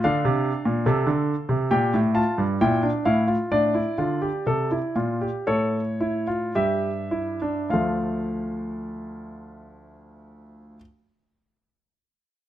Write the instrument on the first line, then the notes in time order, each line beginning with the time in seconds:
grand piano
0.04 D3 D4 F5
0.25 C3
0.65 A#2
0.86 C3 A4
1.06 D3
1.49 C3
1.71 A#2 G4 G5
1.94 A2
2.14 F4 A5
2.38 G2
2.61 A#2 E4 G5
2.83 D4
3.05 A2 E4 F5
3.28 F4
3.52 A2 D4 D5
3.75 E4
3.98 D3 F4
4.22 G4
4.46 C3 A4
4.71 E4
4.96 A#2 F4
5.21 G4
5.47 A2 A4 C#5
6.01 E4
6.27 F4
6.55 G2 G4 E5
7.11 E4
7.42 D4
7.70 D2 A3 F4 F5
7.74 F3